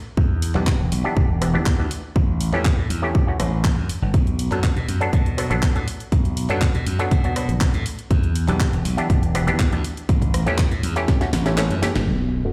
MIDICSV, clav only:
0, 0, Header, 1, 2, 480
1, 0, Start_track
1, 0, Tempo, 495868
1, 167, Time_signature, 4, 2, 24, 8
1, 12126, End_track
2, 0, Start_track
2, 0, Title_t, "Clav"
2, 0, Program_c, 0, 7
2, 528, Note_on_c, 0, 52, 72
2, 532, Note_on_c, 0, 59, 68
2, 533, Note_on_c, 0, 62, 69
2, 536, Note_on_c, 0, 67, 82
2, 696, Note_off_c, 0, 52, 0
2, 698, Note_off_c, 0, 59, 0
2, 699, Note_off_c, 0, 62, 0
2, 700, Note_off_c, 0, 67, 0
2, 1009, Note_on_c, 0, 52, 96
2, 1012, Note_on_c, 0, 59, 90
2, 1015, Note_on_c, 0, 62, 85
2, 1017, Note_on_c, 0, 67, 105
2, 1112, Note_off_c, 0, 52, 0
2, 1114, Note_off_c, 0, 59, 0
2, 1115, Note_off_c, 0, 62, 0
2, 1117, Note_off_c, 0, 67, 0
2, 1365, Note_on_c, 0, 52, 89
2, 1368, Note_on_c, 0, 59, 80
2, 1371, Note_on_c, 0, 62, 79
2, 1373, Note_on_c, 0, 67, 100
2, 1471, Note_off_c, 0, 52, 0
2, 1472, Note_off_c, 0, 59, 0
2, 1474, Note_off_c, 0, 62, 0
2, 1475, Note_off_c, 0, 67, 0
2, 1487, Note_on_c, 0, 52, 86
2, 1489, Note_on_c, 0, 59, 81
2, 1492, Note_on_c, 0, 62, 76
2, 1494, Note_on_c, 0, 67, 94
2, 1655, Note_off_c, 0, 52, 0
2, 1657, Note_off_c, 0, 59, 0
2, 1658, Note_off_c, 0, 62, 0
2, 1659, Note_off_c, 0, 67, 0
2, 1728, Note_on_c, 0, 52, 76
2, 1730, Note_on_c, 0, 59, 67
2, 1733, Note_on_c, 0, 62, 69
2, 1736, Note_on_c, 0, 67, 82
2, 1832, Note_off_c, 0, 52, 0
2, 1833, Note_off_c, 0, 59, 0
2, 1835, Note_off_c, 0, 62, 0
2, 1836, Note_off_c, 0, 67, 0
2, 2448, Note_on_c, 0, 52, 97
2, 2451, Note_on_c, 0, 57, 90
2, 2454, Note_on_c, 0, 61, 86
2, 2456, Note_on_c, 0, 67, 105
2, 2552, Note_off_c, 0, 52, 0
2, 2554, Note_off_c, 0, 57, 0
2, 2555, Note_off_c, 0, 61, 0
2, 2556, Note_off_c, 0, 67, 0
2, 2926, Note_on_c, 0, 52, 94
2, 2929, Note_on_c, 0, 57, 89
2, 2931, Note_on_c, 0, 61, 87
2, 2934, Note_on_c, 0, 67, 108
2, 3139, Note_off_c, 0, 52, 0
2, 3140, Note_off_c, 0, 57, 0
2, 3142, Note_off_c, 0, 61, 0
2, 3143, Note_off_c, 0, 67, 0
2, 3168, Note_on_c, 0, 52, 83
2, 3170, Note_on_c, 0, 57, 76
2, 3173, Note_on_c, 0, 61, 78
2, 3175, Note_on_c, 0, 66, 90
2, 3269, Note_off_c, 0, 52, 0
2, 3270, Note_off_c, 0, 57, 0
2, 3271, Note_off_c, 0, 61, 0
2, 3272, Note_off_c, 0, 66, 0
2, 3286, Note_on_c, 0, 52, 71
2, 3287, Note_on_c, 0, 57, 65
2, 3290, Note_on_c, 0, 61, 65
2, 3293, Note_on_c, 0, 69, 78
2, 3395, Note_off_c, 0, 52, 0
2, 3395, Note_off_c, 0, 57, 0
2, 3397, Note_off_c, 0, 61, 0
2, 3398, Note_off_c, 0, 69, 0
2, 4368, Note_on_c, 0, 54, 74
2, 4370, Note_on_c, 0, 59, 66
2, 4372, Note_on_c, 0, 62, 69
2, 4374, Note_on_c, 0, 69, 84
2, 4536, Note_off_c, 0, 54, 0
2, 4537, Note_off_c, 0, 59, 0
2, 4538, Note_off_c, 0, 62, 0
2, 4539, Note_off_c, 0, 69, 0
2, 4845, Note_on_c, 0, 54, 95
2, 4848, Note_on_c, 0, 59, 86
2, 4850, Note_on_c, 0, 62, 88
2, 4853, Note_on_c, 0, 69, 102
2, 4951, Note_off_c, 0, 54, 0
2, 4952, Note_off_c, 0, 59, 0
2, 4953, Note_off_c, 0, 62, 0
2, 4954, Note_off_c, 0, 69, 0
2, 5201, Note_on_c, 0, 54, 88
2, 5204, Note_on_c, 0, 59, 82
2, 5207, Note_on_c, 0, 62, 81
2, 5210, Note_on_c, 0, 69, 96
2, 5309, Note_off_c, 0, 54, 0
2, 5311, Note_off_c, 0, 59, 0
2, 5312, Note_off_c, 0, 62, 0
2, 5313, Note_off_c, 0, 69, 0
2, 5326, Note_on_c, 0, 54, 87
2, 5329, Note_on_c, 0, 59, 78
2, 5331, Note_on_c, 0, 62, 76
2, 5334, Note_on_c, 0, 69, 95
2, 5495, Note_off_c, 0, 54, 0
2, 5497, Note_off_c, 0, 59, 0
2, 5498, Note_off_c, 0, 62, 0
2, 5499, Note_off_c, 0, 69, 0
2, 5567, Note_on_c, 0, 54, 74
2, 5570, Note_on_c, 0, 59, 68
2, 5573, Note_on_c, 0, 62, 69
2, 5575, Note_on_c, 0, 69, 84
2, 5672, Note_off_c, 0, 54, 0
2, 5673, Note_off_c, 0, 59, 0
2, 5674, Note_off_c, 0, 62, 0
2, 5676, Note_off_c, 0, 69, 0
2, 6286, Note_on_c, 0, 54, 99
2, 6289, Note_on_c, 0, 59, 91
2, 6292, Note_on_c, 0, 62, 90
2, 6295, Note_on_c, 0, 69, 108
2, 6391, Note_off_c, 0, 54, 0
2, 6393, Note_off_c, 0, 59, 0
2, 6394, Note_off_c, 0, 62, 0
2, 6395, Note_off_c, 0, 69, 0
2, 6766, Note_on_c, 0, 54, 96
2, 6768, Note_on_c, 0, 59, 88
2, 6770, Note_on_c, 0, 62, 88
2, 6773, Note_on_c, 0, 69, 106
2, 6979, Note_off_c, 0, 54, 0
2, 6980, Note_off_c, 0, 59, 0
2, 6981, Note_off_c, 0, 62, 0
2, 6983, Note_off_c, 0, 69, 0
2, 7008, Note_on_c, 0, 54, 85
2, 7010, Note_on_c, 0, 59, 77
2, 7013, Note_on_c, 0, 62, 78
2, 7015, Note_on_c, 0, 66, 94
2, 7109, Note_off_c, 0, 54, 0
2, 7110, Note_off_c, 0, 59, 0
2, 7111, Note_off_c, 0, 62, 0
2, 7112, Note_off_c, 0, 66, 0
2, 7125, Note_on_c, 0, 54, 73
2, 7128, Note_on_c, 0, 59, 66
2, 7131, Note_on_c, 0, 62, 65
2, 7133, Note_on_c, 0, 71, 79
2, 7235, Note_off_c, 0, 54, 0
2, 7236, Note_off_c, 0, 59, 0
2, 7237, Note_off_c, 0, 62, 0
2, 7239, Note_off_c, 0, 71, 0
2, 8207, Note_on_c, 0, 52, 75
2, 8210, Note_on_c, 0, 59, 70
2, 8211, Note_on_c, 0, 62, 70
2, 8214, Note_on_c, 0, 67, 83
2, 8375, Note_off_c, 0, 52, 0
2, 8377, Note_off_c, 0, 59, 0
2, 8378, Note_off_c, 0, 62, 0
2, 8379, Note_off_c, 0, 67, 0
2, 8686, Note_on_c, 0, 52, 98
2, 8688, Note_on_c, 0, 59, 87
2, 8691, Note_on_c, 0, 62, 87
2, 8694, Note_on_c, 0, 67, 104
2, 8791, Note_off_c, 0, 52, 0
2, 8792, Note_off_c, 0, 59, 0
2, 8794, Note_off_c, 0, 62, 0
2, 8795, Note_off_c, 0, 67, 0
2, 9046, Note_on_c, 0, 52, 92
2, 9049, Note_on_c, 0, 59, 86
2, 9051, Note_on_c, 0, 62, 81
2, 9053, Note_on_c, 0, 67, 102
2, 9151, Note_off_c, 0, 52, 0
2, 9153, Note_off_c, 0, 59, 0
2, 9154, Note_off_c, 0, 62, 0
2, 9155, Note_off_c, 0, 67, 0
2, 9168, Note_on_c, 0, 52, 90
2, 9171, Note_on_c, 0, 59, 82
2, 9173, Note_on_c, 0, 62, 78
2, 9175, Note_on_c, 0, 67, 95
2, 9336, Note_off_c, 0, 52, 0
2, 9337, Note_off_c, 0, 59, 0
2, 9339, Note_off_c, 0, 62, 0
2, 9340, Note_off_c, 0, 67, 0
2, 9408, Note_on_c, 0, 52, 79
2, 9410, Note_on_c, 0, 59, 73
2, 9412, Note_on_c, 0, 62, 72
2, 9416, Note_on_c, 0, 67, 86
2, 9512, Note_off_c, 0, 52, 0
2, 9513, Note_off_c, 0, 59, 0
2, 9514, Note_off_c, 0, 62, 0
2, 9516, Note_off_c, 0, 67, 0
2, 10127, Note_on_c, 0, 52, 97
2, 10130, Note_on_c, 0, 57, 93
2, 10132, Note_on_c, 0, 61, 93
2, 10134, Note_on_c, 0, 67, 110
2, 10232, Note_off_c, 0, 52, 0
2, 10233, Note_off_c, 0, 57, 0
2, 10234, Note_off_c, 0, 61, 0
2, 10235, Note_off_c, 0, 67, 0
2, 10608, Note_on_c, 0, 52, 95
2, 10611, Note_on_c, 0, 57, 89
2, 10613, Note_on_c, 0, 61, 93
2, 10616, Note_on_c, 0, 67, 106
2, 10820, Note_off_c, 0, 52, 0
2, 10821, Note_off_c, 0, 57, 0
2, 10823, Note_off_c, 0, 61, 0
2, 10824, Note_off_c, 0, 67, 0
2, 10848, Note_on_c, 0, 52, 87
2, 10850, Note_on_c, 0, 57, 81
2, 10853, Note_on_c, 0, 61, 77
2, 10855, Note_on_c, 0, 66, 95
2, 10949, Note_off_c, 0, 52, 0
2, 10950, Note_off_c, 0, 57, 0
2, 10951, Note_off_c, 0, 61, 0
2, 10952, Note_off_c, 0, 66, 0
2, 11089, Note_on_c, 0, 52, 74
2, 11090, Note_on_c, 0, 57, 72
2, 11093, Note_on_c, 0, 61, 72
2, 11097, Note_on_c, 0, 67, 82
2, 11189, Note_off_c, 0, 52, 0
2, 11190, Note_off_c, 0, 57, 0
2, 11191, Note_off_c, 0, 61, 0
2, 11193, Note_off_c, 0, 67, 0
2, 11203, Note_on_c, 0, 52, 85
2, 11206, Note_on_c, 0, 57, 76
2, 11208, Note_on_c, 0, 61, 78
2, 11211, Note_on_c, 0, 69, 92
2, 11376, Note_off_c, 0, 52, 0
2, 11377, Note_off_c, 0, 57, 0
2, 11379, Note_off_c, 0, 61, 0
2, 11380, Note_off_c, 0, 69, 0
2, 11444, Note_on_c, 0, 52, 92
2, 11447, Note_on_c, 0, 57, 85
2, 11449, Note_on_c, 0, 61, 86
2, 11453, Note_on_c, 0, 67, 103
2, 11554, Note_off_c, 0, 52, 0
2, 11556, Note_off_c, 0, 57, 0
2, 11557, Note_off_c, 0, 61, 0
2, 11558, Note_off_c, 0, 67, 0
2, 12049, Note_on_c, 0, 50, 69
2, 12051, Note_on_c, 0, 57, 64
2, 12053, Note_on_c, 0, 59, 63
2, 12056, Note_on_c, 0, 66, 77
2, 12126, Note_off_c, 0, 50, 0
2, 12126, Note_off_c, 0, 57, 0
2, 12126, Note_off_c, 0, 59, 0
2, 12126, Note_off_c, 0, 66, 0
2, 12126, End_track
0, 0, End_of_file